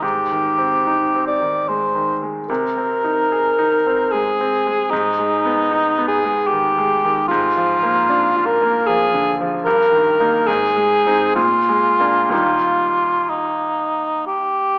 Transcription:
0.02 2.45 G#2 soft
0.02 1.26 G4 medium
0.32 0.76 D#3 soft
0.58 1.03 C4 soft
0.87 1.31 D#4 soft
1.15 1.58 C4 soft
1.27 1.70 D5 medium
1.42 1.84 D#3 soft
1.68 2.12 G#3 soft
1.68 2.22 C5 medium
1.95 2.38 D#3 soft
2.22 2.49 G#3 soft
2.49 4.88 C3 soft
2.49 4.13 A#4 medium
2.77 3.21 C4 soft
3.04 3.48 D#4 soft
3.32 3.75 G#4 soft
3.59 4.01 D#4 soft
3.87 4.29 C4 soft
4.12 4.55 G#3 soft
4.12 4.92 G#4 medium
4.41 4.82 C4 soft
4.67 4.92 G#3 soft
4.90 7.25 G#2 soft
4.90 6.07 D#4 medium
5.19 5.60 G#3 soft
5.45 5.86 B3 soft
5.71 6.12 D#4 soft
5.98 6.39 B3 soft
6.08 6.49 G#4 medium
6.25 6.66 G#3 soft
6.47 7.27 G4 medium
6.52 6.93 D#3 soft
6.78 7.19 G#3 soft
7.04 7.30 D#3 soft
7.28 9.63 G#2 medium
7.28 8.47 F4 medium
7.57 7.98 F3 soft
7.83 8.24 A#3 soft
8.09 8.50 D4 soft
8.36 8.77 F4 soft
8.46 8.88 A#4 medium
8.62 9.03 A#3 soft
8.86 9.30 F3 soft
8.86 9.39 G#4 medium
9.14 9.55 D3 soft
9.41 9.66 F3 soft
9.65 10.45 G2 medium
9.65 10.48 A#4 medium
9.92 10.36 D#3 soft
10.20 10.45 A#3 soft
10.20 10.45 D#4 soft
10.47 11.34 G#2 soft
10.47 11.35 G#4 medium
10.76 11.24 G#3 soft
11.06 11.33 C4 soft
11.06 11.34 D#4 soft
11.35 12.29 A#2 soft
11.35 12.29 F4 medium
11.69 12.19 G#3 soft
12.00 12.29 A#3 soft
12.00 12.29 D4 soft
12.29 14.79 D#2 soft
12.29 14.79 G3 soft
12.29 14.79 A#3 soft
12.29 14.79 D#4 soft
12.29 13.31 F4 medium
13.30 14.27 D#4 soft
14.27 14.79 G4 medium

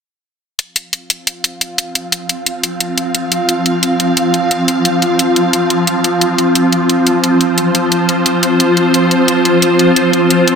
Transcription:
0.59 10.55 F3 medium
0.59 10.55 C4 medium
0.59 10.55 F4 medium
0.59 6.02 F5 medium
0.59 closed hi-hat medium
0.76 closed hi-hat medium
0.93 closed hi-hat medium
1.10 closed hi-hat medium
1.27 closed hi-hat medium
1.44 closed hi-hat medium
1.61 closed hi-hat medium
1.78 closed hi-hat medium
1.95 closed hi-hat medium
2.12 closed hi-hat medium
2.29 closed hi-hat medium
2.46 closed hi-hat medium
2.63 closed hi-hat medium
2.80 closed hi-hat medium
2.98 closed hi-hat medium
3.15 closed hi-hat medium
3.32 closed hi-hat medium
3.49 closed hi-hat medium
3.66 closed hi-hat medium
3.83 closed hi-hat medium
4.00 closed hi-hat medium
4.17 closed hi-hat medium
4.34 closed hi-hat medium
4.51 closed hi-hat medium
4.68 closed hi-hat medium
4.85 closed hi-hat medium
5.02 closed hi-hat medium
5.19 closed hi-hat medium
5.36 closed hi-hat medium
5.53 closed hi-hat medium
5.70 closed hi-hat medium
5.87 closed hi-hat medium
6.04 10.55 C5 medium
6.04 closed hi-hat medium
6.21 closed hi-hat medium
6.38 closed hi-hat medium
6.55 closed hi-hat medium
6.72 closed hi-hat medium
6.89 closed hi-hat medium
7.07 closed hi-hat medium
7.24 closed hi-hat medium
7.41 closed hi-hat medium
7.58 closed hi-hat medium
7.75 closed hi-hat medium
7.92 closed hi-hat medium
8.09 closed hi-hat medium
8.26 closed hi-hat medium
8.43 closed hi-hat medium
8.60 closed hi-hat medium
8.77 closed hi-hat medium
8.94 closed hi-hat medium
9.11 closed hi-hat medium
9.28 closed hi-hat loud
9.45 closed hi-hat medium
9.62 closed hi-hat medium
9.79 closed hi-hat medium
9.96 closed hi-hat medium
10.13 closed hi-hat medium
10.30 closed hi-hat medium
10.48 closed hi-hat medium

